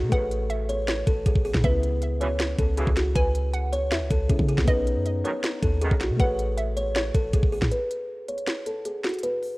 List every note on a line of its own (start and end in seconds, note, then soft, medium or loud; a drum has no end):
0.00 0.12 B2 loud
0.00 0.13 B3 medium
0.00 0.14 C#4 medium
0.00 0.11 D#4 medium
0.09 1.03 A1 loud
0.09 1.59 A3 medium
0.09 1.61 G#4 medium
0.09 0.65 B4 loud
0.09 0.48 F#5 loud
0.09 kick loud
0.09 closed hi-hat medium
0.15 1.63 C#5 medium
0.31 closed hi-hat medium
0.50 0.86 E5 medium
0.50 closed hi-hat medium
0.69 0.84 C#5 medium
0.69 closed hi-hat medium
0.88 1.24 C#5 medium
0.88 snare loud
0.88 closed hi-hat medium
1.07 1.25 A1 loud
1.07 1.22 A4 medium
1.07 kick medium
1.07 closed hi-hat medium
1.26 1.35 A1 loud
1.26 1.41 G#4 medium
1.26 kick medium
1.26 closed hi-hat medium
1.35 1.54 A1 loud
1.35 kick medium
1.45 1.60 G#4 medium
1.45 open hi-hat soft
1.54 1.63 A2 loud
1.54 kick loud
1.54 snare loud
1.61 2.55 C#2 loud
1.61 4.24 C#3 medium
1.61 4.26 B3 medium
1.61 2.17 B4 loud
1.61 2.00 E5 loud
1.61 kick loud
1.61 closed hi-hat medium
1.67 4.27 E4 medium
1.83 closed hi-hat medium
2.02 closed hi-hat medium
2.21 2.27 B2 loud
2.21 2.27 C#3 loud
2.21 2.27 E3 loud
2.21 2.36 C#5 medium
2.21 closed hi-hat medium
2.40 snare loud
2.40 closed hi-hat medium
2.59 2.86 C#2 loud
2.59 2.74 A4 medium
2.59 kick medium
2.59 closed hi-hat medium
2.78 2.90 B2 loud
2.78 2.90 C#3 loud
2.78 2.90 E3 loud
2.78 2.93 G#4 medium
2.78 closed hi-hat medium
2.87 3.15 C#2 loud
2.87 kick medium
2.97 3.12 F#4 medium
2.97 snare medium
2.97 closed hi-hat medium
3.15 3.93 C#2 loud
3.15 3.69 B4 loud
3.15 3.51 G#5 loud
3.15 kick loud
3.15 closed hi-hat medium
3.35 closed hi-hat medium
3.54 3.89 F#5 loud
3.54 closed hi-hat medium
3.73 3.87 C#5 medium
3.73 closed hi-hat medium
3.92 4.03 E2 loud
3.92 4.64 E5 medium
3.92 snare loud
3.92 closed hi-hat medium
4.01 4.10 C#2 loud
4.11 4.29 C#2 loud
4.11 4.25 A4 medium
4.11 kick medium
4.11 closed hi-hat medium
4.28 4.39 B1 loud
4.28 4.67 C#3 medium
4.28 4.63 B3 soft
4.28 4.69 E4 medium
4.28 4.44 G#4 medium
4.28 kick medium
4.28 closed hi-hat medium
4.39 4.57 C#3 loud
4.39 kick medium
4.49 4.63 G#4 medium
4.49 closed hi-hat medium
4.58 4.67 C#2 loud
4.58 kick loud
4.58 snare loud
4.65 4.98 B1 loud
4.65 6.15 B3 medium
4.65 6.17 C#4 medium
4.65 5.21 B4 loud
4.65 5.03 D#5 loud
4.65 kick loud
4.65 closed hi-hat medium
4.71 6.18 D#4 medium
4.87 closed hi-hat medium
4.96 5.23 F#2 loud
5.06 closed hi-hat medium
5.25 5.31 F#2 loud
5.25 5.31 B2 loud
5.25 5.31 D#3 loud
5.25 5.39 C#5 medium
5.25 closed hi-hat medium
5.44 snare loud
5.44 closed hi-hat medium
5.62 5.90 D#2 loud
5.62 5.77 A4 medium
5.62 kick medium
5.62 closed hi-hat medium
5.81 5.94 F#2 loud
5.81 5.94 B2 loud
5.81 5.94 D#3 loud
5.81 5.96 G#4 medium
5.81 closed hi-hat medium
5.91 6.12 B1 loud
5.91 kick medium
6.01 6.15 F#4 medium
6.01 snare medium
6.01 closed hi-hat medium
6.10 6.19 B2 loud
6.16 7.11 A1 loud
6.16 7.67 A3 medium
6.16 7.68 G#4 medium
6.16 6.73 B4 loud
6.16 6.55 F#5 loud
6.16 kick loud
6.16 closed hi-hat medium
6.23 7.70 C#5 medium
6.39 closed hi-hat medium
6.57 6.93 E5 medium
6.57 closed hi-hat medium
6.77 6.91 C#5 medium
6.77 closed hi-hat medium
6.96 7.32 C#5 medium
6.96 snare loud
6.96 closed hi-hat medium
7.14 7.33 A1 loud
7.14 7.29 A4 medium
7.14 kick medium
7.14 closed hi-hat medium
7.33 7.42 A1 loud
7.33 7.48 G#4 medium
7.33 kick medium
7.33 closed hi-hat loud
7.43 7.61 A1 loud
7.43 kick medium
7.53 7.67 G#4 medium
7.53 open hi-hat medium
7.62 7.71 A2 loud
7.62 kick loud
7.62 snare loud
7.72 8.25 B4 loud
7.72 closed hi-hat medium
7.91 closed hi-hat medium
8.28 8.43 C#5 medium
8.28 closed hi-hat medium
8.38 closed hi-hat soft
8.47 snare loud
8.47 closed hi-hat medium
8.66 8.81 A4 medium
8.66 closed hi-hat medium
8.85 9.00 G#4 medium
8.85 closed hi-hat medium
9.04 9.19 F#4 medium
9.04 snare loud
9.04 closed hi-hat soft
9.09 closed hi-hat soft
9.14 closed hi-hat medium
9.19 closed hi-hat medium
9.23 9.58 B4 loud
9.23 closed hi-hat medium
9.43 open hi-hat medium